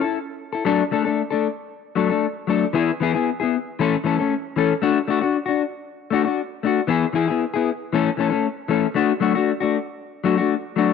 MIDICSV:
0, 0, Header, 1, 3, 480
1, 0, Start_track
1, 0, Key_signature, 2, "major"
1, 0, Tempo, 518135
1, 615, Time_signature, 4, 2, 24, 8
1, 10128, End_track
2, 0, Start_track
2, 0, Title_t, "Clean electric guitar"
2, 0, Program_c, 0, 27
2, 11, Note_on_c, 0, 69, 55
2, 36, Note_on_c, 0, 64, 45
2, 155, Note_off_c, 0, 69, 0
2, 168, Note_off_c, 0, 64, 0
2, 487, Note_on_c, 0, 69, 51
2, 506, Note_on_c, 0, 64, 44
2, 601, Note_on_c, 0, 54, 78
2, 604, Note_off_c, 0, 69, 0
2, 604, Note_on_c, 0, 57, 73
2, 612, Note_off_c, 0, 64, 0
2, 615, Note_on_c, 0, 69, 83
2, 616, Note_on_c, 0, 62, 76
2, 758, Note_off_c, 0, 54, 0
2, 759, Note_off_c, 0, 57, 0
2, 765, Note_off_c, 0, 62, 0
2, 765, Note_off_c, 0, 69, 0
2, 851, Note_on_c, 0, 57, 73
2, 858, Note_on_c, 0, 62, 65
2, 865, Note_on_c, 0, 69, 75
2, 959, Note_off_c, 0, 69, 0
2, 970, Note_on_c, 0, 69, 56
2, 973, Note_off_c, 0, 62, 0
2, 980, Note_off_c, 0, 57, 0
2, 985, Note_on_c, 0, 62, 52
2, 995, Note_on_c, 0, 57, 44
2, 1116, Note_off_c, 0, 69, 0
2, 1123, Note_off_c, 0, 62, 0
2, 1128, Note_off_c, 0, 57, 0
2, 1209, Note_on_c, 0, 69, 53
2, 1223, Note_on_c, 0, 62, 54
2, 1235, Note_on_c, 0, 57, 47
2, 1356, Note_off_c, 0, 69, 0
2, 1362, Note_off_c, 0, 62, 0
2, 1368, Note_off_c, 0, 57, 0
2, 1810, Note_on_c, 0, 54, 64
2, 1814, Note_on_c, 0, 57, 64
2, 1822, Note_on_c, 0, 62, 59
2, 1832, Note_on_c, 0, 69, 69
2, 1931, Note_off_c, 0, 69, 0
2, 1941, Note_off_c, 0, 54, 0
2, 1942, Note_on_c, 0, 69, 60
2, 1943, Note_off_c, 0, 57, 0
2, 1946, Note_off_c, 0, 62, 0
2, 1957, Note_on_c, 0, 62, 50
2, 1963, Note_on_c, 0, 57, 47
2, 2083, Note_off_c, 0, 69, 0
2, 2090, Note_off_c, 0, 62, 0
2, 2093, Note_off_c, 0, 57, 0
2, 2290, Note_on_c, 0, 54, 67
2, 2302, Note_on_c, 0, 57, 63
2, 2311, Note_on_c, 0, 62, 67
2, 2316, Note_on_c, 0, 69, 70
2, 2444, Note_off_c, 0, 54, 0
2, 2450, Note_off_c, 0, 57, 0
2, 2454, Note_off_c, 0, 62, 0
2, 2457, Note_off_c, 0, 69, 0
2, 2530, Note_on_c, 0, 52, 71
2, 2537, Note_on_c, 0, 59, 77
2, 2544, Note_on_c, 0, 64, 89
2, 2550, Note_on_c, 0, 68, 93
2, 2684, Note_off_c, 0, 52, 0
2, 2687, Note_off_c, 0, 59, 0
2, 2691, Note_off_c, 0, 64, 0
2, 2694, Note_off_c, 0, 68, 0
2, 2782, Note_on_c, 0, 52, 64
2, 2794, Note_on_c, 0, 59, 73
2, 2803, Note_on_c, 0, 64, 79
2, 2808, Note_on_c, 0, 68, 81
2, 2902, Note_off_c, 0, 68, 0
2, 2907, Note_off_c, 0, 52, 0
2, 2909, Note_off_c, 0, 64, 0
2, 2913, Note_off_c, 0, 59, 0
2, 2913, Note_on_c, 0, 68, 59
2, 2920, Note_on_c, 0, 64, 54
2, 2930, Note_on_c, 0, 59, 50
2, 3049, Note_off_c, 0, 68, 0
2, 3052, Note_off_c, 0, 64, 0
2, 3057, Note_off_c, 0, 59, 0
2, 3148, Note_on_c, 0, 68, 58
2, 3157, Note_on_c, 0, 64, 51
2, 3178, Note_on_c, 0, 59, 50
2, 3286, Note_off_c, 0, 68, 0
2, 3291, Note_off_c, 0, 64, 0
2, 3301, Note_off_c, 0, 59, 0
2, 3513, Note_on_c, 0, 52, 78
2, 3520, Note_on_c, 0, 57, 80
2, 3528, Note_on_c, 0, 61, 87
2, 3531, Note_on_c, 0, 69, 86
2, 3655, Note_off_c, 0, 52, 0
2, 3659, Note_off_c, 0, 57, 0
2, 3663, Note_off_c, 0, 61, 0
2, 3665, Note_off_c, 0, 69, 0
2, 3740, Note_on_c, 0, 52, 69
2, 3748, Note_on_c, 0, 57, 64
2, 3758, Note_on_c, 0, 61, 69
2, 3766, Note_on_c, 0, 69, 68
2, 3866, Note_off_c, 0, 52, 0
2, 3869, Note_off_c, 0, 69, 0
2, 3870, Note_off_c, 0, 57, 0
2, 3875, Note_off_c, 0, 61, 0
2, 3880, Note_on_c, 0, 69, 59
2, 3891, Note_on_c, 0, 61, 53
2, 3898, Note_on_c, 0, 57, 46
2, 4012, Note_off_c, 0, 69, 0
2, 4018, Note_off_c, 0, 61, 0
2, 4022, Note_off_c, 0, 57, 0
2, 4226, Note_on_c, 0, 52, 64
2, 4237, Note_on_c, 0, 57, 66
2, 4238, Note_on_c, 0, 61, 72
2, 4245, Note_on_c, 0, 69, 70
2, 4372, Note_off_c, 0, 52, 0
2, 4378, Note_off_c, 0, 57, 0
2, 4378, Note_off_c, 0, 61, 0
2, 4382, Note_off_c, 0, 69, 0
2, 4463, Note_on_c, 0, 57, 76
2, 4472, Note_on_c, 0, 62, 87
2, 4477, Note_on_c, 0, 66, 86
2, 4610, Note_off_c, 0, 57, 0
2, 4615, Note_off_c, 0, 62, 0
2, 4618, Note_off_c, 0, 66, 0
2, 4702, Note_on_c, 0, 57, 65
2, 4709, Note_on_c, 0, 62, 66
2, 4726, Note_on_c, 0, 66, 79
2, 4820, Note_off_c, 0, 66, 0
2, 4827, Note_off_c, 0, 57, 0
2, 4831, Note_off_c, 0, 62, 0
2, 4831, Note_on_c, 0, 66, 58
2, 4849, Note_on_c, 0, 62, 50
2, 4968, Note_off_c, 0, 66, 0
2, 4977, Note_off_c, 0, 62, 0
2, 5056, Note_on_c, 0, 66, 54
2, 5080, Note_on_c, 0, 62, 49
2, 5200, Note_off_c, 0, 66, 0
2, 5212, Note_off_c, 0, 62, 0
2, 5656, Note_on_c, 0, 57, 65
2, 5673, Note_on_c, 0, 62, 67
2, 5685, Note_on_c, 0, 66, 73
2, 5776, Note_off_c, 0, 66, 0
2, 5784, Note_off_c, 0, 57, 0
2, 5788, Note_on_c, 0, 66, 56
2, 5793, Note_off_c, 0, 62, 0
2, 5811, Note_on_c, 0, 62, 52
2, 5926, Note_off_c, 0, 66, 0
2, 5938, Note_off_c, 0, 62, 0
2, 6144, Note_on_c, 0, 57, 62
2, 6157, Note_on_c, 0, 62, 71
2, 6175, Note_on_c, 0, 66, 66
2, 6291, Note_off_c, 0, 57, 0
2, 6297, Note_off_c, 0, 62, 0
2, 6306, Note_off_c, 0, 66, 0
2, 6367, Note_on_c, 0, 52, 70
2, 6374, Note_on_c, 0, 59, 81
2, 6382, Note_on_c, 0, 64, 88
2, 6391, Note_on_c, 0, 68, 78
2, 6522, Note_off_c, 0, 52, 0
2, 6526, Note_off_c, 0, 59, 0
2, 6530, Note_off_c, 0, 64, 0
2, 6534, Note_off_c, 0, 68, 0
2, 6604, Note_on_c, 0, 52, 63
2, 6624, Note_on_c, 0, 64, 80
2, 6631, Note_on_c, 0, 68, 74
2, 6733, Note_off_c, 0, 68, 0
2, 6738, Note_off_c, 0, 52, 0
2, 6744, Note_on_c, 0, 68, 59
2, 6748, Note_off_c, 0, 64, 0
2, 6764, Note_on_c, 0, 64, 54
2, 6771, Note_on_c, 0, 59, 51
2, 6884, Note_off_c, 0, 68, 0
2, 6894, Note_off_c, 0, 64, 0
2, 6897, Note_off_c, 0, 59, 0
2, 6982, Note_on_c, 0, 68, 66
2, 7000, Note_on_c, 0, 64, 58
2, 7007, Note_on_c, 0, 59, 50
2, 7122, Note_off_c, 0, 68, 0
2, 7132, Note_off_c, 0, 64, 0
2, 7135, Note_off_c, 0, 59, 0
2, 7343, Note_on_c, 0, 52, 78
2, 7353, Note_on_c, 0, 57, 85
2, 7359, Note_on_c, 0, 61, 89
2, 7367, Note_on_c, 0, 69, 86
2, 7490, Note_off_c, 0, 52, 0
2, 7495, Note_off_c, 0, 57, 0
2, 7498, Note_off_c, 0, 61, 0
2, 7502, Note_off_c, 0, 69, 0
2, 7569, Note_on_c, 0, 52, 58
2, 7584, Note_on_c, 0, 57, 62
2, 7591, Note_on_c, 0, 61, 75
2, 7602, Note_on_c, 0, 69, 66
2, 7677, Note_off_c, 0, 69, 0
2, 7688, Note_on_c, 0, 69, 58
2, 7693, Note_off_c, 0, 61, 0
2, 7700, Note_off_c, 0, 52, 0
2, 7703, Note_off_c, 0, 57, 0
2, 7704, Note_on_c, 0, 61, 51
2, 7714, Note_on_c, 0, 57, 49
2, 7835, Note_off_c, 0, 69, 0
2, 7843, Note_off_c, 0, 61, 0
2, 7848, Note_off_c, 0, 57, 0
2, 8044, Note_on_c, 0, 52, 68
2, 8051, Note_on_c, 0, 57, 61
2, 8064, Note_on_c, 0, 61, 63
2, 8067, Note_on_c, 0, 69, 66
2, 8200, Note_off_c, 0, 52, 0
2, 8204, Note_off_c, 0, 57, 0
2, 8210, Note_off_c, 0, 61, 0
2, 8211, Note_off_c, 0, 69, 0
2, 8292, Note_on_c, 0, 57, 81
2, 8300, Note_on_c, 0, 62, 82
2, 8304, Note_on_c, 0, 66, 84
2, 8444, Note_off_c, 0, 57, 0
2, 8448, Note_off_c, 0, 62, 0
2, 8450, Note_off_c, 0, 66, 0
2, 8523, Note_on_c, 0, 54, 64
2, 8530, Note_on_c, 0, 57, 76
2, 8539, Note_on_c, 0, 62, 67
2, 8544, Note_on_c, 0, 66, 77
2, 8652, Note_off_c, 0, 66, 0
2, 8656, Note_off_c, 0, 54, 0
2, 8660, Note_off_c, 0, 57, 0
2, 8664, Note_off_c, 0, 62, 0
2, 8664, Note_on_c, 0, 66, 63
2, 8676, Note_on_c, 0, 62, 50
2, 8688, Note_on_c, 0, 57, 46
2, 8803, Note_off_c, 0, 66, 0
2, 8809, Note_off_c, 0, 62, 0
2, 8815, Note_off_c, 0, 57, 0
2, 8898, Note_on_c, 0, 66, 61
2, 8909, Note_on_c, 0, 62, 57
2, 8921, Note_on_c, 0, 57, 49
2, 9040, Note_off_c, 0, 66, 0
2, 9045, Note_off_c, 0, 62, 0
2, 9051, Note_off_c, 0, 57, 0
2, 9483, Note_on_c, 0, 54, 65
2, 9493, Note_on_c, 0, 62, 64
2, 9495, Note_on_c, 0, 57, 72
2, 9503, Note_on_c, 0, 66, 78
2, 9600, Note_off_c, 0, 66, 0
2, 9611, Note_on_c, 0, 66, 60
2, 9616, Note_off_c, 0, 54, 0
2, 9618, Note_off_c, 0, 62, 0
2, 9622, Note_off_c, 0, 57, 0
2, 9629, Note_on_c, 0, 62, 50
2, 9639, Note_on_c, 0, 57, 47
2, 9756, Note_off_c, 0, 66, 0
2, 9765, Note_off_c, 0, 62, 0
2, 9770, Note_off_c, 0, 57, 0
2, 9968, Note_on_c, 0, 54, 63
2, 9973, Note_on_c, 0, 57, 64
2, 9987, Note_on_c, 0, 62, 73
2, 9991, Note_on_c, 0, 66, 64
2, 10121, Note_off_c, 0, 54, 0
2, 10123, Note_off_c, 0, 57, 0
2, 10128, Note_off_c, 0, 62, 0
2, 10128, Note_off_c, 0, 66, 0
2, 10128, End_track
3, 0, Start_track
3, 0, Title_t, "Muted clean electric guitar strokes"
3, 845, Note_on_c, 9, 29, 65
3, 938, Note_off_c, 9, 29, 0
3, 6612, Note_on_c, 9, 29, 72
3, 6705, Note_off_c, 9, 29, 0
3, 8286, Note_on_c, 9, 29, 77
3, 8379, Note_off_c, 9, 29, 0
3, 10128, End_track
0, 0, End_of_file